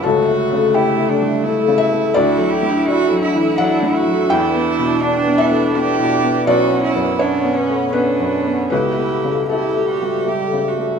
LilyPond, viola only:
\new Staff \with { instrumentName = "Viola" } { \time 3/4 \key a \mixolydian \tempo 4 = 83 a2. | e'2. | d'2. | cis'4 cis'4 cis'4 |
g'4 g'4. r8 | }